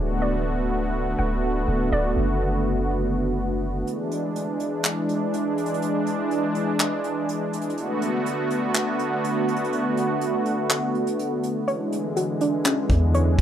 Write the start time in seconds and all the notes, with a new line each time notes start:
Already playing: D1 D3 A3 B3 F#4
0.22 D5
1.19 D1 F#5
1.68 D1
1.92 D1 D5
2.17 F#1
3.87 E3 G#3 D4, closed hi-hat
4.12 closed hi-hat
4.36 closed hi-hat
4.60 closed hi-hat
4.84 clap, closed hi-hat
5.09 closed hi-hat
5.34 closed hi-hat
5.58 closed hi-hat
5.66 closed hi-hat
5.74 closed hi-hat
5.82 closed hi-hat
6.07 closed hi-hat
6.31 closed hi-hat
6.55 closed hi-hat
6.80 clap, closed hi-hat
7.04 closed hi-hat
7.29 closed hi-hat
7.53 closed hi-hat
7.61 closed hi-hat
7.70 closed hi-hat
7.78 D3 A3 B3 F#4, closed hi-hat
8.02 closed hi-hat
8.26 closed hi-hat
8.50 closed hi-hat
8.75 clap, closed hi-hat
8.99 closed hi-hat
9.24 closed hi-hat
9.48 closed hi-hat
9.56 closed hi-hat
9.64 closed hi-hat
9.73 closed hi-hat
9.97 closed hi-hat
10.21 closed hi-hat
10.46 closed hi-hat
10.70 clap, closed hi-hat
10.95 closed hi-hat
11.07 closed hi-hat
11.19 closed hi-hat
11.43 closed hi-hat
11.68 D3 E3 G#3 C#5, closed hi-hat
11.92 closed hi-hat
12.17 F#4, closed hi-hat
12.41 D4, closed hi-hat
12.65 C#4, clap, closed hi-hat
12.90 E2, kick, closed hi-hat
13.14 C#5, closed hi-hat